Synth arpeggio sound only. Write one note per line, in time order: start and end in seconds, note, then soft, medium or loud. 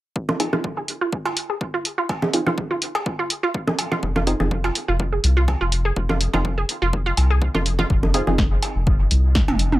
0.29 0.34 F4 loud
0.53 0.58 F4 medium
0.77 0.85 G#4 medium
1.01 1.06 F4 loud
1.25 1.30 F4 medium
1.50 1.57 G#4 medium
1.74 1.79 F4 loud
1.98 2.03 F4 loud
2.22 2.30 G#4 medium
2.46 2.51 F4 medium
2.71 2.76 F4 loud
2.95 3.02 G#4 medium
3.19 3.24 F4 loud
3.43 3.48 F4 loud
3.67 3.75 G#4 medium
3.92 3.97 F4 loud
4.16 4.21 F4 loud
4.40 4.47 G#4 medium
4.64 4.69 F4 loud
4.88 4.93 F4 loud
5.12 5.20 G#4 medium
5.37 5.42 F4 loud
5.61 5.66 F4 loud
5.85 5.93 G#4 medium
6.09 6.14 F4 loud
6.33 6.38 F4 medium
6.58 6.65 G#4 medium
6.82 6.87 F4 loud
7.06 7.11 F4 loud
7.30 7.38 G#4 medium
7.55 7.60 F4 loud
7.79 7.84 F4 loud